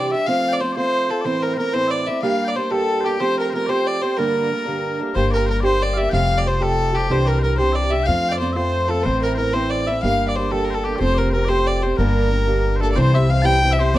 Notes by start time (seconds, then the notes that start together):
Already playing: C3 E3 G3 D4 G4 D5
0.12 G3 D4 G4 E5
0.26 F3 A3 C4 F4 F5
0.49 G5
0.53 D5
0.61 F3 A3 C4 F4 C5
0.72 C5 D5
0.76 F3 A3 C4 F4 C5
1.09 A3 C4 F4 A4
1.21 A2 E3 C5 D5
1.26 A3 C4 E4 C5
1.43 A#4
1.54 A#4 C5
1.58 E3 A3 C4 E4
1.73 A2 E3 A3 C4 E4 C5
1.88 D5 E5
2.07 A3 C4 E4 E5
2.22 G3 A#3 D4 G4 F5
2.45 D5 G5
2.56 G3 A#3 D4 G4 C5
2.71 G3 A#3 D4 G4 A4
3.00 G4 C5
3.05 A#3 D4 G4
3.20 F3 A3 C4 G4 C5
3.38 A#4
3.50 F3 A#4 C5
3.55 A3 C4 G4
3.67 F3 A3 C4 G4 C5 D5
3.71 C5
3.87 D5
4.02 A3 C4 G4 C5
4.17 G2 D3 G3 A#3 D4 A#4
4.51 G3 A3 D4
4.66 G2 D3 G3 A#3 D4
4.99 G3 A3 A#3 D4
5.14 G1 G3 A#3 D4 G4 C5
5.31 A#4 D5
5.46 G3 A#3 D4 A#4 C5
5.50 G4
5.61 D4 G4 C5 D5
5.65 G3 A#3 C5
5.82 D5
5.94 G4 E5 F5
5.98 A#3 D4 E5
6.10 F1 F2 C3 F3 G3 A3 G4 F5 G5
6.38 D5
6.45 F3 G3 A3 G4 C5
6.61 F2 C3 F3 G3 A3 G4 A4
6.94 F3 G3 A3 G4
7.10 C2 C3 E3 G3 D4 G4 C5
7.25 A#4 D5
7.39 E3 G3 A#4 C5
7.44 D4 G4
7.57 C3 E3 G3 D4 G4 C5
7.72 D5 E5
7.91 G3 D4 G4 E5
8.03 F3 F5 G5
8.07 F2 A3 C4 F4
8.29 D5 G5
8.33 D5
8.39 F3 A3 C4 F4 C5
8.53 A3 F4 C5 E5
8.57 F3 C4
8.89 A3 C4 F4 A4
9.03 A1 A2 E3 A3 C4 E4 C5
9.22 A#4
9.35 E3 A#4 C5
9.39 A3 C4 E4
9.53 A2 E3 A3 C4 E4 C5
9.70 D5
9.87 A3 C4 E4 E5
10.02 G1 G3 A#3 D4 G4 F5
10.28 D5
10.36 G3 A#3 D4 G4 C5
10.51 G3 A#3 D4 G4 A4
10.64 A#4
10.70 A4 C5
10.74 A4
10.80 A4
10.84 A#3 D4 G4
10.96 C5 D5
11.00 F1 F3 A3 C4 G4
11.14 A#4 D5
11.30 F3 A#4 C5
11.34 A3 C4 G4
11.45 G4 C5 D5
11.49 F3 A3 C4 C5
11.67 D5
11.82 A3 C4 G4 C5
11.97 G1 G2 D3 G3 A#3 D4 A#4
12.31 G3 A3 D4
12.47 G2 D3 G3 A#3 D4
12.76 D4 C5
12.81 G3 A3 A#3 A4
12.92 C3 C5 D5
12.96 C2 E3 G3 C4 E4 C5
13.13 G3 C4 E4 E5
13.28 E3 G3 C4 E4 F5
13.42 C3 E3 G3 C4 E4 G5 A5
13.61 E3 G3 C4 E4
13.71 E5
13.77 G3 C4 E4 C5
13.93 F2 C3 F3 A3 C4 D4 D5